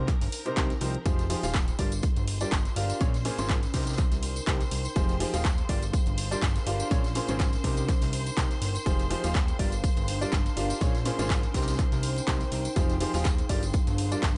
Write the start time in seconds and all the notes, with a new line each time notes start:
Already playing: C2 D#4 A#4 C5 A#5
0.08 kick, clap, closed hi-hat
0.21 G1, snare, open hi-hat
0.32 closed hi-hat, open hi-hat
0.39 G5
0.46 C3 C4 D#4 G4 A#4 C5, closed hi-hat
0.56 C2 C3 C4 D#4 G4 A#4 C5, kick, snare, clap, closed hi-hat
0.70 snare, closed hi-hat
0.81 C2 F3 C4 D#4 G4 A#4 C5, closed hi-hat, open hi-hat
0.95 closed hi-hat
1.05 F1 F3 D#4 F4 G4 G#4 C5 C6, kick, closed hi-hat, tambourine
1.19 snare, closed hi-hat, tambourine
1.30 F3 D#4 F4 G4 G#4 C5, closed hi-hat, open hi-hat
1.40 D#1 F3 D#4 F4 G4 G#4 D#5 F5, open hi-hat
1.44 tambourine
1.53 kick, snare, clap, closed hi-hat, tambourine
1.68 closed hi-hat, tambourine
1.79 G1 G3 D4 F4 G4 A#4 D5, kick, closed hi-hat, open hi-hat
1.92 closed hi-hat, tambourine
2.02 kick, closed hi-hat, tambourine
2.10 A#4
2.16 G1, closed hi-hat, tambourine
2.27 closed hi-hat, open hi-hat
2.34 D5
2.41 G3 D4 F4 G4 A#4 D5, closed hi-hat, tambourine
2.51 G1, kick, snare, clap, closed hi-hat, tambourine
2.65 snare, closed hi-hat, tambourine
2.76 G1 D4 F4 G4 A#4 F5, closed hi-hat, open hi-hat
2.90 closed hi-hat, tambourine
3.00 A#1 A#2 C#4 F4 G#4 A#4 C#5, kick, closed hi-hat, tambourine
3.14 snare, closed hi-hat, tambourine
3.25 A#2 C#4 F4 G#4 A#4 C5, closed hi-hat, open hi-hat
3.35 G#1 A#2 G#4 A#4 C5 G#5, closed hi-hat
3.39 C#4 F4 C5, tambourine
3.49 kick, snare, clap, closed hi-hat
3.63 snare, closed hi-hat, tambourine
3.74 C2 C3 C4 D#4 G4 A#4 C5, kick, snare, closed hi-hat, open hi-hat
3.80 snare, closed hi-hat
3.87 snare, closed hi-hat, tambourine
3.92 snare, closed hi-hat
3.97 kick, clap, closed hi-hat, tambourine
4.12 C2, snare, closed hi-hat, tambourine
4.23 closed hi-hat, open hi-hat
4.29 G5
4.36 closed hi-hat, tambourine
4.47 C2 C3 C4 D#4 G4 A#4 C5, kick, snare, clap, closed hi-hat, tambourine
4.60 snare, closed hi-hat, tambourine
4.71 C2, closed hi-hat, open hi-hat
4.85 closed hi-hat, tambourine
4.95 F1 F3 D#4 F4 G4 G#4 C5, kick, closed hi-hat, tambourine
5.03 G#4
5.09 snare, closed hi-hat, tambourine
5.20 F3 D#4 F4 G4 G#4 C5, closed hi-hat, open hi-hat
5.30 D#1 F3 D#4 F4 G4 G#4 F5, open hi-hat, tambourine
5.44 kick, snare, clap, closed hi-hat, tambourine
5.58 closed hi-hat, tambourine
5.69 G1 G3 D4 F4 G4 A#4 D5, kick, closed hi-hat, open hi-hat
5.82 closed hi-hat, tambourine
5.93 kick, closed hi-hat, tambourine
6.03 A#4, tambourine
6.07 G1, closed hi-hat
6.18 closed hi-hat, open hi-hat
6.31 G3 D4 F4 G4 A#4 D5, closed hi-hat, tambourine
6.42 G1, kick, snare, clap, closed hi-hat, tambourine
6.56 snare, closed hi-hat, tambourine
6.67 G1 D4 F4 G4 A#4 F5, closed hi-hat, open hi-hat
6.80 closed hi-hat, tambourine
6.91 A#1 A#2 C#4 F4 G#4 A#4 C#5, kick, closed hi-hat, tambourine
7.04 snare, closed hi-hat, tambourine
7.15 A#2 C#4 F4 G#4 A#4 C5, closed hi-hat, open hi-hat
7.25 G#1 A#2 C#4 F4 G#4 A#4 C5 G#5, closed hi-hat, tambourine
7.39 kick, snare, clap, closed hi-hat, tambourine
7.53 snare, closed hi-hat, tambourine
7.64 C2 C3 C4 D#4 G4 A#4 C5, kick, closed hi-hat, open hi-hat
7.77 closed hi-hat, tambourine
7.89 kick, clap, closed hi-hat, tambourine
8.01 C2, snare, open hi-hat, tambourine
8.13 closed hi-hat, open hi-hat
8.20 G5
8.26 closed hi-hat, tambourine
8.37 C2 C3 C4 D#4 G4 A#4 C5, kick, snare, clap, closed hi-hat, tambourine
8.50 snare, closed hi-hat, tambourine
8.61 G1, closed hi-hat, open hi-hat
8.75 closed hi-hat, tambourine
8.86 F1 F3 D#4 F4 G4 G#4 C5, kick, closed hi-hat, tambourine
8.99 snare, closed hi-hat, tambourine
9.10 F3 D#4 F4 G4 G#4 C5, closed hi-hat, open hi-hat
9.20 F3 D#4 F4 G4 G#4 F5, tambourine
9.24 D#1, open hi-hat
9.34 kick, snare, clap, closed hi-hat, tambourine
9.48 closed hi-hat, tambourine
9.59 G1 G3 D4 F4 G4 A#4 D5, kick, closed hi-hat, open hi-hat
9.72 closed hi-hat, tambourine
9.78 A#4
9.83 kick, closed hi-hat, tambourine
9.96 G1, closed hi-hat, tambourine
10.08 closed hi-hat, open hi-hat
10.21 G3 D4 F4 G4 A#4 D5, closed hi-hat, tambourine
10.32 G1, kick, snare, clap, closed hi-hat, tambourine
10.46 snare, closed hi-hat, tambourine
10.57 G1 D4 F4 G4 A#4 F5, closed hi-hat, open hi-hat
10.70 closed hi-hat, tambourine
10.81 A#1 A#2 C#4 F4 G#4 A#4 C#5, kick, closed hi-hat, tambourine
10.95 snare, closed hi-hat, tambourine
11.05 A#2 C#4 F4 G#4 A#4 C5, closed hi-hat, open hi-hat
11.15 C5 G#5
11.19 G#1 A#2 C#4 F4 G#4 A#4 C5, closed hi-hat, tambourine
11.30 kick, snare, clap, closed hi-hat, tambourine
11.43 snare, closed hi-hat, tambourine
11.54 C2 C3 C4 D#4 G4 A#4 C5, kick, snare, closed hi-hat, open hi-hat
11.61 snare, closed hi-hat
11.68 snare, closed hi-hat, tambourine
11.73 snare, closed hi-hat
11.79 G5, kick, clap, closed hi-hat, tambourine
11.92 C2, snare, closed hi-hat, tambourine
12.03 closed hi-hat, open hi-hat
12.16 closed hi-hat, tambourine
12.27 C2 C3 C4 D#4 G4 A#4 C5, kick, snare, clap, closed hi-hat, tambourine
12.40 snare, closed hi-hat, tambourine
12.51 C2, closed hi-hat, open hi-hat
12.65 closed hi-hat, tambourine
12.76 F1 F3 D#4 F4 G4 G#4 C5, kick, closed hi-hat, tambourine
12.90 snare, closed hi-hat, tambourine
12.94 G#4
13.01 F3 D#4 F4 G4 G#4 C5, closed hi-hat, open hi-hat
13.10 F5
13.14 D#1 F3 D#4 F4 G4 G#4 F5, open hi-hat, tambourine
13.24 kick, snare, clap, closed hi-hat, tambourine
13.38 closed hi-hat, tambourine
13.49 G1 G3 D4 F4 G4 A#4 D5, kick, closed hi-hat, open hi-hat
13.63 closed hi-hat, tambourine
13.73 kick, closed hi-hat, tambourine
13.82 A#4
13.87 G1, closed hi-hat, tambourine
13.98 closed hi-hat, open hi-hat
14.12 G3 D4 F4 G4 A#4 D5, closed hi-hat, tambourine
14.22 G1, kick, snare, clap, closed hi-hat, tambourine